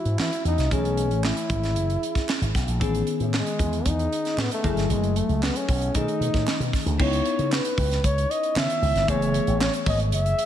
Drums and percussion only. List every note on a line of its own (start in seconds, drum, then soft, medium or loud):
0.05 closed hi-hat soft
0.19 snare loud
0.19 clap medium
0.33 closed hi-hat medium
0.45 closed hi-hat medium
0.58 snare soft
0.58 closed hi-hat soft
0.71 kick medium
0.71 closed hi-hat medium
0.85 closed hi-hat soft
0.97 closed hi-hat medium
1.11 closed hi-hat soft
1.24 snare medium
1.24 clap medium
1.37 closed hi-hat medium
1.50 kick medium
1.50 closed hi-hat medium
1.63 snare soft
1.63 closed hi-hat soft
1.76 closed hi-hat medium
1.90 closed hi-hat soft
2.03 closed hi-hat medium
2.15 kick medium
2.15 snare soft
2.15 closed hi-hat soft
2.29 snare medium
2.29 clap medium
2.42 closed hi-hat soft
2.55 kick medium
2.55 snare soft
2.55 closed hi-hat medium
2.68 closed hi-hat soft
2.81 kick medium
2.81 closed hi-hat medium
2.95 closed hi-hat soft
3.07 closed hi-hat medium
3.20 closed hi-hat soft
3.34 snare medium
3.34 clap medium
3.47 closed hi-hat medium
3.59 kick medium
3.59 closed hi-hat medium
3.73 closed hi-hat soft
3.85 kick medium
3.85 closed hi-hat medium
3.99 closed hi-hat soft
4.13 closed hi-hat medium
4.25 snare soft
4.25 closed hi-hat soft
4.38 snare medium
4.38 clap medium
4.51 closed hi-hat medium
4.64 kick medium
4.64 closed hi-hat soft
4.77 snare soft
4.77 closed hi-hat soft
4.90 closed hi-hat medium
5.03 closed hi-hat soft
5.16 closed hi-hat medium
5.29 closed hi-hat soft
5.43 snare loud
5.43 clap medium
5.56 closed hi-hat medium
5.69 kick medium
5.69 open hi-hat medium
5.82 closed hi-hat soft
5.95 kick medium
5.95 closed hi-hat medium
6.08 closed hi-hat soft
6.22 closed hi-hat medium
6.34 kick medium
6.34 snare soft
6.34 closed hi-hat soft
6.47 snare loud
6.47 clap medium
6.61 closed hi-hat medium
6.73 kick medium
6.73 snare soft
6.73 open hi-hat medium
6.86 closed hi-hat soft
7.00 kick loud
7.00 crash loud
7.13 closed hi-hat medium
7.25 closed hi-hat medium
7.39 closed hi-hat soft
7.52 snare loud
7.52 clap medium
7.65 closed hi-hat medium
7.78 kick medium
7.78 open hi-hat medium
7.91 snare soft
7.91 closed hi-hat soft
8.04 kick medium
8.04 closed hi-hat medium
8.18 closed hi-hat soft
8.31 closed hi-hat medium
8.43 closed hi-hat soft
8.56 snare loud
8.56 clap medium
8.70 closed hi-hat medium
8.83 open hi-hat medium
8.96 snare soft
8.96 closed hi-hat medium
9.08 kick loud
9.08 closed hi-hat medium
9.22 closed hi-hat soft
9.34 closed hi-hat medium
9.47 closed hi-hat soft
9.61 snare loud
9.61 clap medium
9.73 closed hi-hat medium
9.86 kick loud
9.86 open hi-hat medium
9.99 closed hi-hat soft
10.12 closed hi-hat medium
10.26 closed hi-hat medium
10.39 closed hi-hat medium